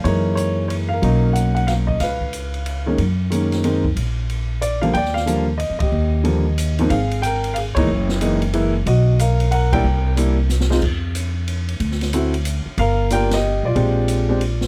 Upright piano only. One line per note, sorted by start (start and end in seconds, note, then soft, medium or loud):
0.04 0.95 E3 soft
0.04 0.95 G#3 soft
0.04 0.95 A#3 soft
0.04 0.96 D#4 soft
0.04 0.56 A#4 medium
0.04 0.34 C#5 medium
0.35 0.67 C#5 medium
0.68 0.73 C#5 medium
0.89 1.31 F5 medium
0.93 1.33 A#4 medium
1.02 1.93 F#3 medium
1.02 1.93 A#3 medium
1.02 1.93 C#4 medium
1.02 1.94 D#4 medium
1.33 1.53 F#5 medium
1.55 1.67 F#5 medium
1.67 1.72 F5 medium
1.87 2.00 D#5 medium
2.00 2.84 B4 medium
2.00 2.82 F5 medium
2.86 2.97 D#3 soft
2.86 2.97 G#3 medium
2.86 2.97 A#3 medium
2.86 2.97 C#4 medium
3.30 3.62 D#3 medium
3.30 3.62 G#3 soft
3.30 3.63 A#3 soft
3.30 3.63 C#4 medium
3.64 3.83 D#3 medium
3.64 3.83 G#3 medium
3.64 3.83 A#3 medium
3.64 3.83 C4 medium
4.62 4.81 D5 medium
4.82 4.93 D3 medium
4.82 4.93 F3 medium
4.82 4.93 G3 medium
4.82 4.93 A#3 medium
4.82 4.93 F5 medium
4.94 5.45 D5 medium
4.94 5.15 G5 loud
5.14 5.45 F5 loud
5.26 5.45 D3 medium
5.26 5.45 F3 medium
5.26 5.46 G3 medium
5.26 5.46 A#3 medium
5.58 5.77 D#5 medium
5.79 6.75 G4 medium
5.79 6.74 D#5 medium
6.24 6.43 D3 medium
6.24 6.43 F3 medium
6.24 6.43 G3 soft
6.24 6.44 A#3 medium
6.79 6.89 G#2 medium
6.79 6.89 D#3 medium
6.79 6.90 F3 medium
6.79 6.90 A#3 medium
6.79 6.90 C4 medium
6.90 7.22 G#4 medium
6.90 7.24 F5 medium
7.22 7.55 A#4 medium
7.22 7.53 G5 loud
7.54 7.59 F5 medium
7.58 7.63 G#4 medium
7.75 7.87 E3 medium
7.75 7.87 G#3 medium
7.75 7.87 A#3 medium
7.75 7.88 D#4 medium
7.75 8.17 C#5 medium
7.79 8.19 E4 medium
8.21 8.40 E3 medium
8.21 8.40 G#3 medium
8.21 8.40 A#3 medium
8.21 8.40 D#4 medium
8.53 8.72 E3 medium
8.53 8.72 G#3 medium
8.53 8.73 A#3 medium
8.53 8.73 E4 medium
8.87 9.17 F#4 medium
8.87 9.20 D#5 medium
9.20 9.50 A#4 medium
9.20 9.50 F5 medium
9.51 9.72 A#4 medium
9.51 9.73 F#5 medium
9.72 9.83 G3 medium
9.72 9.83 A#3 medium
9.72 9.84 D4 medium
9.72 9.83 E4 medium
9.72 10.15 A#4 medium
9.72 10.14 G5 loud
10.16 10.35 G3 medium
10.16 10.36 A#3 medium
10.16 10.36 D4 soft
10.16 10.36 E4 medium
10.70 10.81 G#3 medium
10.70 10.81 C4 medium
10.70 10.81 D#4 medium
10.70 10.81 F4 medium
12.13 12.32 A3 medium
12.13 12.32 C4 medium
12.13 12.32 E4 medium
12.13 12.32 F#4 medium
12.79 13.09 A#4 medium
12.79 13.09 F5 loud
13.11 13.29 A#3 medium
13.11 13.30 D4 medium
13.11 13.30 F4 medium
13.11 13.30 G4 medium
13.11 13.32 A#4 medium
13.11 13.33 G5 loud
13.34 13.64 G4 medium
13.34 13.66 D#5 medium
13.65 14.59 F4 medium
13.65 14.58 D5 medium
13.75 14.25 G#3 medium
13.75 14.25 C4 medium
13.75 14.25 D4 medium
13.75 14.25 G4 medium
14.29 14.40 G#3 medium
14.29 14.40 C4 medium
14.29 14.40 D4 medium
14.29 14.40 G4 medium